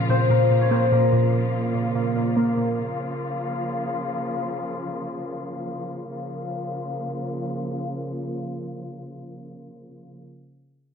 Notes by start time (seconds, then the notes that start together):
Already playing: A#2 C#3 F3 A#3 C#4 F4 A#4 C#5
0.09 A#2 C4 C5
0.30 A#2 A#3 A#4
0.50 A#2
0.61 C#4 C#5
0.71 A#3 C4 C5
0.92 A#2 A#3 A#4
1.12 A#2
1.33 A#2
1.75 A#2
1.95 A#2
2.16 A#2
2.37 A#3
2.57 A#2
2.78 C#3 F3 F4
6.09 C#3 F3 A#3 F4